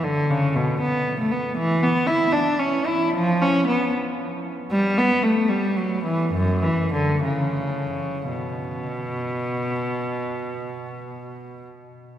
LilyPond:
\new Staff \with { instrumentName = "Cello" } { \clef bass \time 6/8 \key b \minor \tempo 4. = 73 d8 cis8 b,8 b8. a16 b8 | e8 b8 e'8 d'8 cis'8 e'8 | eis8 cis'8 b8 r4. | g8 b8 a8 g8 fis8 e8 |
fis,8 e8 d8 cis4. | b,2.~ | b,2. | }